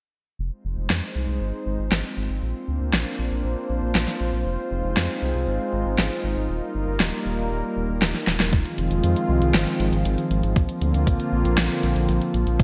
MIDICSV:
0, 0, Header, 1, 4, 480
1, 0, Start_track
1, 0, Tempo, 508475
1, 371, Time_signature, 4, 2, 24, 8
1, 11927, End_track
2, 0, Start_track
2, 0, Title_t, "Analog synth pad"
2, 0, Program_c, 0, 89
2, 371, Note_on_c, 0, 63, 71
2, 371, Note_on_c, 0, 65, 72
2, 371, Note_on_c, 0, 72, 86
2, 372, Note_on_c, 0, 56, 77
2, 372, Note_on_c, 0, 60, 72
2, 2271, Note_off_c, 0, 72, 0
2, 2272, Note_off_c, 0, 56, 0
2, 2272, Note_off_c, 0, 63, 0
2, 2290, Note_on_c, 0, 58, 81
2, 2290, Note_on_c, 0, 62, 76
2, 2290, Note_on_c, 0, 72, 91
2, 4174, Note_off_c, 0, 60, 0
2, 4191, Note_off_c, 0, 58, 0
2, 4191, Note_off_c, 0, 62, 0
2, 4211, Note_on_c, 0, 60, 75
2, 4212, Note_on_c, 0, 56, 83
2, 4212, Note_on_c, 0, 63, 74
2, 6092, Note_off_c, 0, 72, 0
2, 6112, Note_off_c, 0, 56, 0
2, 6112, Note_off_c, 0, 60, 0
2, 6132, Note_on_c, 0, 55, 81
2, 6132, Note_on_c, 0, 70, 91
2, 6133, Note_on_c, 0, 58, 73
2, 8013, Note_off_c, 0, 65, 0
2, 8014, Note_off_c, 0, 63, 0
2, 8032, Note_off_c, 0, 55, 0
2, 8032, Note_off_c, 0, 70, 0
2, 8033, Note_off_c, 0, 58, 0
2, 8048, Note_on_c, 0, 56, 76
2, 8049, Note_on_c, 0, 51, 83
2, 8049, Note_on_c, 0, 53, 74
2, 8049, Note_on_c, 0, 65, 93
2, 8050, Note_on_c, 0, 60, 75
2, 9950, Note_off_c, 0, 56, 0
2, 9951, Note_off_c, 0, 51, 0
2, 9951, Note_off_c, 0, 60, 0
2, 9951, Note_off_c, 0, 65, 0
2, 9970, Note_on_c, 0, 58, 78
2, 9970, Note_on_c, 0, 65, 91
2, 9971, Note_on_c, 0, 50, 82
2, 9971, Note_on_c, 0, 60, 75
2, 11871, Note_off_c, 0, 58, 0
2, 11871, Note_off_c, 0, 65, 0
2, 11872, Note_off_c, 0, 50, 0
2, 11872, Note_off_c, 0, 60, 0
2, 11891, Note_on_c, 0, 51, 81
2, 11892, Note_on_c, 0, 56, 77
2, 11892, Note_on_c, 0, 60, 77
2, 11892, Note_on_c, 0, 65, 89
2, 11927, Note_off_c, 0, 51, 0
2, 11927, Note_off_c, 0, 53, 0
2, 11927, Note_off_c, 0, 56, 0
2, 11927, Note_off_c, 0, 60, 0
2, 11927, Note_off_c, 0, 65, 0
2, 11927, End_track
3, 0, Start_track
3, 0, Title_t, "Analog synth bass"
3, 0, Program_c, 1, 38
3, 370, Note_on_c, 1, 29, 93
3, 480, Note_off_c, 1, 29, 0
3, 610, Note_on_c, 1, 29, 90
3, 720, Note_off_c, 1, 29, 0
3, 729, Note_on_c, 1, 29, 78
3, 840, Note_off_c, 1, 29, 0
3, 849, Note_on_c, 1, 41, 103
3, 960, Note_off_c, 1, 41, 0
3, 1089, Note_on_c, 1, 36, 91
3, 1200, Note_off_c, 1, 36, 0
3, 1210, Note_on_c, 1, 36, 77
3, 1320, Note_off_c, 1, 36, 0
3, 1329, Note_on_c, 1, 32, 94
3, 1440, Note_off_c, 1, 32, 0
3, 1568, Note_on_c, 1, 32, 89
3, 1679, Note_off_c, 1, 32, 0
3, 1689, Note_on_c, 1, 32, 76
3, 1800, Note_off_c, 1, 32, 0
3, 1809, Note_on_c, 1, 32, 98
3, 1920, Note_off_c, 1, 32, 0
3, 2048, Note_on_c, 1, 32, 91
3, 2159, Note_off_c, 1, 32, 0
3, 2169, Note_on_c, 1, 32, 78
3, 2280, Note_off_c, 1, 32, 0
3, 2289, Note_on_c, 1, 34, 96
3, 2399, Note_off_c, 1, 34, 0
3, 2530, Note_on_c, 1, 38, 91
3, 2640, Note_off_c, 1, 38, 0
3, 2649, Note_on_c, 1, 38, 77
3, 2759, Note_off_c, 1, 38, 0
3, 2768, Note_on_c, 1, 34, 98
3, 2879, Note_off_c, 1, 34, 0
3, 3009, Note_on_c, 1, 34, 91
3, 3119, Note_off_c, 1, 34, 0
3, 3129, Note_on_c, 1, 34, 78
3, 3239, Note_off_c, 1, 34, 0
3, 3248, Note_on_c, 1, 34, 94
3, 3359, Note_off_c, 1, 34, 0
3, 3488, Note_on_c, 1, 34, 92
3, 3599, Note_off_c, 1, 34, 0
3, 3607, Note_on_c, 1, 34, 79
3, 3719, Note_off_c, 1, 34, 0
3, 3728, Note_on_c, 1, 34, 97
3, 3839, Note_off_c, 1, 34, 0
3, 3969, Note_on_c, 1, 34, 92
3, 4079, Note_off_c, 1, 34, 0
3, 4088, Note_on_c, 1, 34, 77
3, 4199, Note_off_c, 1, 34, 0
3, 4207, Note_on_c, 1, 29, 95
3, 4319, Note_off_c, 1, 29, 0
3, 4448, Note_on_c, 1, 29, 91
3, 4559, Note_off_c, 1, 29, 0
3, 4568, Note_on_c, 1, 29, 82
3, 4679, Note_off_c, 1, 29, 0
3, 4689, Note_on_c, 1, 41, 101
3, 4800, Note_off_c, 1, 41, 0
3, 4930, Note_on_c, 1, 36, 90
3, 5040, Note_off_c, 1, 36, 0
3, 5049, Note_on_c, 1, 36, 77
3, 5160, Note_off_c, 1, 36, 0
3, 5169, Note_on_c, 1, 32, 94
3, 5280, Note_off_c, 1, 32, 0
3, 5408, Note_on_c, 1, 32, 94
3, 5519, Note_off_c, 1, 32, 0
3, 5529, Note_on_c, 1, 32, 75
3, 5640, Note_off_c, 1, 32, 0
3, 5650, Note_on_c, 1, 32, 95
3, 5760, Note_off_c, 1, 32, 0
3, 5889, Note_on_c, 1, 32, 92
3, 5999, Note_off_c, 1, 32, 0
3, 6010, Note_on_c, 1, 32, 77
3, 6120, Note_off_c, 1, 32, 0
3, 6130, Note_on_c, 1, 27, 98
3, 6240, Note_off_c, 1, 27, 0
3, 6370, Note_on_c, 1, 31, 94
3, 6480, Note_off_c, 1, 31, 0
3, 6490, Note_on_c, 1, 31, 81
3, 6600, Note_off_c, 1, 31, 0
3, 6610, Note_on_c, 1, 27, 103
3, 6720, Note_off_c, 1, 27, 0
3, 6849, Note_on_c, 1, 27, 91
3, 6960, Note_off_c, 1, 27, 0
3, 6968, Note_on_c, 1, 27, 80
3, 7079, Note_off_c, 1, 27, 0
3, 7089, Note_on_c, 1, 27, 100
3, 7200, Note_off_c, 1, 27, 0
3, 7329, Note_on_c, 1, 27, 94
3, 7440, Note_off_c, 1, 27, 0
3, 7449, Note_on_c, 1, 27, 76
3, 7560, Note_off_c, 1, 27, 0
3, 7569, Note_on_c, 1, 27, 97
3, 7680, Note_off_c, 1, 27, 0
3, 7809, Note_on_c, 1, 27, 91
3, 7919, Note_off_c, 1, 27, 0
3, 7928, Note_on_c, 1, 27, 79
3, 8039, Note_off_c, 1, 27, 0
3, 8050, Note_on_c, 1, 29, 98
3, 8160, Note_off_c, 1, 29, 0
3, 8288, Note_on_c, 1, 29, 92
3, 8399, Note_off_c, 1, 29, 0
3, 8408, Note_on_c, 1, 29, 82
3, 8519, Note_off_c, 1, 29, 0
3, 8529, Note_on_c, 1, 41, 101
3, 8639, Note_off_c, 1, 41, 0
3, 8769, Note_on_c, 1, 36, 93
3, 8880, Note_off_c, 1, 36, 0
3, 8888, Note_on_c, 1, 36, 81
3, 8999, Note_off_c, 1, 36, 0
3, 9009, Note_on_c, 1, 32, 97
3, 9120, Note_off_c, 1, 32, 0
3, 9248, Note_on_c, 1, 32, 92
3, 9359, Note_off_c, 1, 32, 0
3, 9369, Note_on_c, 1, 32, 76
3, 9480, Note_off_c, 1, 32, 0
3, 9488, Note_on_c, 1, 32, 97
3, 9599, Note_off_c, 1, 32, 0
3, 9729, Note_on_c, 1, 32, 94
3, 9839, Note_off_c, 1, 32, 0
3, 9849, Note_on_c, 1, 32, 79
3, 9960, Note_off_c, 1, 32, 0
3, 9970, Note_on_c, 1, 34, 99
3, 10080, Note_off_c, 1, 34, 0
3, 10209, Note_on_c, 1, 38, 96
3, 10320, Note_off_c, 1, 38, 0
3, 10329, Note_on_c, 1, 38, 83
3, 10440, Note_off_c, 1, 38, 0
3, 10450, Note_on_c, 1, 34, 104
3, 10560, Note_off_c, 1, 34, 0
3, 10689, Note_on_c, 1, 34, 96
3, 10800, Note_off_c, 1, 34, 0
3, 10809, Note_on_c, 1, 34, 84
3, 10920, Note_off_c, 1, 34, 0
3, 10930, Note_on_c, 1, 34, 102
3, 11040, Note_off_c, 1, 34, 0
3, 11170, Note_on_c, 1, 34, 92
3, 11280, Note_off_c, 1, 34, 0
3, 11289, Note_on_c, 1, 34, 80
3, 11400, Note_off_c, 1, 34, 0
3, 11409, Note_on_c, 1, 34, 102
3, 11520, Note_off_c, 1, 34, 0
3, 11649, Note_on_c, 1, 34, 94
3, 11760, Note_off_c, 1, 34, 0
3, 11770, Note_on_c, 1, 34, 81
3, 11880, Note_off_c, 1, 34, 0
3, 11891, Note_on_c, 1, 29, 101
3, 11927, Note_off_c, 1, 29, 0
3, 11927, End_track
4, 0, Start_track
4, 0, Title_t, "Drums"
4, 850, Note_on_c, 9, 38, 109
4, 945, Note_off_c, 9, 38, 0
4, 1810, Note_on_c, 9, 38, 108
4, 1904, Note_off_c, 9, 38, 0
4, 2770, Note_on_c, 9, 38, 109
4, 2865, Note_off_c, 9, 38, 0
4, 3730, Note_on_c, 9, 38, 112
4, 3825, Note_off_c, 9, 38, 0
4, 3850, Note_on_c, 9, 38, 36
4, 3944, Note_off_c, 9, 38, 0
4, 4691, Note_on_c, 9, 38, 116
4, 4785, Note_off_c, 9, 38, 0
4, 5650, Note_on_c, 9, 38, 113
4, 5744, Note_off_c, 9, 38, 0
4, 6609, Note_on_c, 9, 38, 114
4, 6704, Note_off_c, 9, 38, 0
4, 7570, Note_on_c, 9, 38, 112
4, 7664, Note_off_c, 9, 38, 0
4, 7690, Note_on_c, 9, 38, 36
4, 7784, Note_off_c, 9, 38, 0
4, 7810, Note_on_c, 9, 38, 81
4, 7904, Note_off_c, 9, 38, 0
4, 7930, Note_on_c, 9, 38, 92
4, 8024, Note_off_c, 9, 38, 0
4, 8050, Note_on_c, 9, 36, 116
4, 8050, Note_on_c, 9, 42, 95
4, 8145, Note_off_c, 9, 36, 0
4, 8145, Note_off_c, 9, 42, 0
4, 8170, Note_on_c, 9, 42, 40
4, 8265, Note_off_c, 9, 42, 0
4, 8290, Note_on_c, 9, 42, 64
4, 8384, Note_off_c, 9, 42, 0
4, 8410, Note_on_c, 9, 42, 40
4, 8504, Note_off_c, 9, 42, 0
4, 8530, Note_on_c, 9, 42, 92
4, 8624, Note_off_c, 9, 42, 0
4, 8651, Note_on_c, 9, 42, 38
4, 8745, Note_off_c, 9, 42, 0
4, 8890, Note_on_c, 9, 42, 38
4, 8984, Note_off_c, 9, 42, 0
4, 9010, Note_on_c, 9, 38, 117
4, 9010, Note_on_c, 9, 42, 96
4, 9104, Note_off_c, 9, 38, 0
4, 9104, Note_off_c, 9, 42, 0
4, 9130, Note_on_c, 9, 42, 38
4, 9225, Note_off_c, 9, 42, 0
4, 9251, Note_on_c, 9, 42, 67
4, 9345, Note_off_c, 9, 42, 0
4, 9371, Note_on_c, 9, 42, 38
4, 9465, Note_off_c, 9, 42, 0
4, 9491, Note_on_c, 9, 42, 91
4, 9585, Note_off_c, 9, 42, 0
4, 9611, Note_on_c, 9, 42, 39
4, 9705, Note_off_c, 9, 42, 0
4, 9731, Note_on_c, 9, 42, 67
4, 9826, Note_off_c, 9, 42, 0
4, 9850, Note_on_c, 9, 42, 39
4, 9944, Note_off_c, 9, 42, 0
4, 9970, Note_on_c, 9, 36, 121
4, 9971, Note_on_c, 9, 42, 96
4, 10065, Note_off_c, 9, 36, 0
4, 10065, Note_off_c, 9, 42, 0
4, 10090, Note_on_c, 9, 42, 39
4, 10184, Note_off_c, 9, 42, 0
4, 10210, Note_on_c, 9, 42, 65
4, 10304, Note_off_c, 9, 42, 0
4, 10331, Note_on_c, 9, 42, 39
4, 10425, Note_off_c, 9, 42, 0
4, 10450, Note_on_c, 9, 36, 104
4, 10450, Note_on_c, 9, 42, 92
4, 10544, Note_off_c, 9, 36, 0
4, 10545, Note_off_c, 9, 42, 0
4, 10570, Note_on_c, 9, 42, 40
4, 10665, Note_off_c, 9, 42, 0
4, 10811, Note_on_c, 9, 42, 38
4, 10905, Note_off_c, 9, 42, 0
4, 10929, Note_on_c, 9, 38, 123
4, 10929, Note_on_c, 9, 42, 94
4, 11024, Note_off_c, 9, 38, 0
4, 11024, Note_off_c, 9, 42, 0
4, 11050, Note_on_c, 9, 42, 37
4, 11145, Note_off_c, 9, 42, 0
4, 11170, Note_on_c, 9, 42, 66
4, 11265, Note_off_c, 9, 42, 0
4, 11291, Note_on_c, 9, 42, 39
4, 11385, Note_off_c, 9, 42, 0
4, 11410, Note_on_c, 9, 42, 90
4, 11504, Note_off_c, 9, 42, 0
4, 11532, Note_on_c, 9, 42, 41
4, 11626, Note_off_c, 9, 42, 0
4, 11651, Note_on_c, 9, 42, 67
4, 11746, Note_off_c, 9, 42, 0
4, 11771, Note_on_c, 9, 42, 38
4, 11865, Note_off_c, 9, 42, 0
4, 11890, Note_on_c, 9, 36, 123
4, 11891, Note_on_c, 9, 42, 89
4, 11927, Note_off_c, 9, 36, 0
4, 11927, Note_off_c, 9, 42, 0
4, 11927, End_track
0, 0, End_of_file